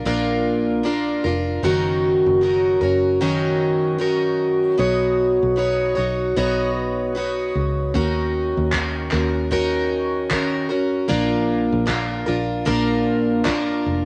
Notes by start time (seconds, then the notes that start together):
0.05 A#1 A#2 A#3 D4 F4 A#4
0.83 A#3 D4 F4 A#4
1.24 F1 D4 F4 A#4
1.63 F#1 D#3 F#3 C#4 F#4 A#4
2.26 F#1
2.41 D#3 C#4 F#4 A#4
2.81 F#1 C#4 F#4 A#4
3.21 D#3 F#3 C#4 F#4 A#4
3.98 D#3 C#4 F#4 A#4
4.78 B1 B3 D#4 F#4 C#5
5.43 B1
5.56 B3 D#4 F#4 C#5
5.95 B1 D#4 F#4 C#5
6.36 B1 B3 D#4 F#4 C#5
7.15 B3 D#4 F#4 C#5
7.55 C#2
7.94 D#2 D#3 C#4 F#4 A#4, kick
8.57 D#2
8.72 D#3 C#4 F#4 A#4, kick, clap
9.11 D#2 F#4 A#4, clap
9.15 C#4
9.51 D#3 C#4 F#4 A#4, kick
10.30 D#3 C#4 F#4 A#4, kick, clap
10.69 C#4 F#4 A#4
11.08 A#1 A#2 A#3 D4 F4 A#4, kick
11.72 A#1
11.86 A#3 D4 F4 A#4, kick, clap
12.26 A#1 D4 F4 A#4
12.65 A#1 A#2 A#3 D4 F4 A#4, kick
13.44 A#3 D4 F4 A#4, kick, clap
13.86 F1